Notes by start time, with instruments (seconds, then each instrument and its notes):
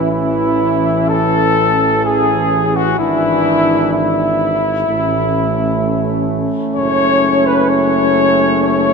Already playing: tuba A1, trombone E3, french horn C#4
0.11 cornet E4, trumpet E4
1.09 cornet A4, trumpet A4
2.05 trumpet G#4, cornet G#4
2.75 cornet F#4, trumpet F#4
2.99 tuba G#1, trombone E3, french horn D4, cornet E4, trumpet E4
3.94 cornet E4, trumpet E4
4.87 tuba A1, trombone A3, french horn C#4
6.75 tuba F#1, trumpet C#5, cornet C#5
7.46 trumpet B4, cornet B4
7.69 trumpet C#5, cornet C#5
8.63 trumpet C#5, cornet C#5